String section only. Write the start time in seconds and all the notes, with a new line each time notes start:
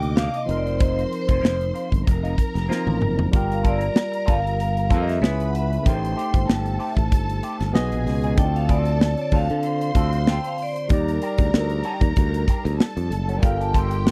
Already playing: D#5 D6
0.49 C5 C6
2.08 A#4 A#5
3.34 A#4 A#5
5.23 B4 B5
5.86 C5 C6
6.49 A4 A5
7.76 G#4 G#5
8.39 A4 A5
9.64 C5 C6
10.90 A#4 A#5
12.79 A4 A5
13.42 G4 G5